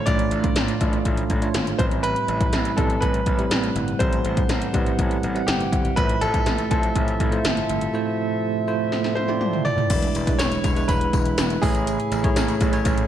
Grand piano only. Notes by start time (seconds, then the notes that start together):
0.06 D5
1.78 C5
2.03 B4
2.77 A4
3.01 B4
3.99 C5
5.47 G4
5.96 B4
6.21 A4
6.71 A4
9.15 C5
9.65 D5
10.39 C#5
10.88 B4
11.62 G#4